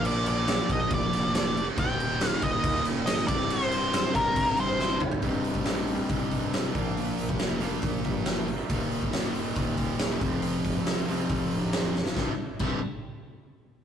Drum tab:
CC |x-x-x-x-x-x-x-x-|x-x-x-x-x-x-x-x-|x-x-x-x-x-x-----|----------------|
HH |----------------|----------------|----------------|o-o-o-o-o-o-o-o-|
SD |----o-----o-oo--|----o-----o-oo--|----o-------o---|----o-------o---|
T2 |----------------|----------------|--------------o-|----------------|
FT |----------------|----------------|---------------o|----------------|
BD |------o-o-------|o-----o-o-----o-|------o-o-------|o--o----o-o---o-|

CC |----------------|----------------|----------------|----x-----------|
HH |o-o-o-o-o-o-o-o-|o-o-o-o-o-o-o-o-|o-o-o-o-o-o-o---|----------------|
SD |----o-------o---|----o-------o---|----o-------o-oo|o---------------|
T2 |----------------|----------------|----------------|----------------|
FT |----------------|----------------|----------------|----------------|
BD |---o----o-o-----|o--o----o-o---o-|--o-----o-------|o---o-----------|